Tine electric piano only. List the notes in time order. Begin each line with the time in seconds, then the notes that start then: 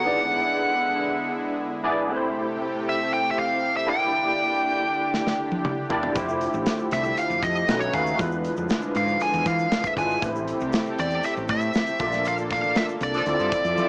0.05 B3 D4 E4 G#4 D5
1.83 B3 D4 E4 G#4 D5
2.08 A3 C4 E4 G4 B4
2.15 C5
3.86 A#3 D4 E4 G4 D5
5.90 A#3 D4 E4 G4 D5
6.15 A3 E4 F4 G4 C5
7.69 A3 C#4 D#4 F#4 B4
7.93 A3 C#4 D#4 F#4 B4
8.18 G#3 D4 E4 F4 B4
9.96 G#3 D4 E4 F4 B4
10.21 A3 C4 E4 G4 B4
10.29 C5
11.99 A#3 D4 F4 A4 D5
13.26 C4 E4 F4 A4 D5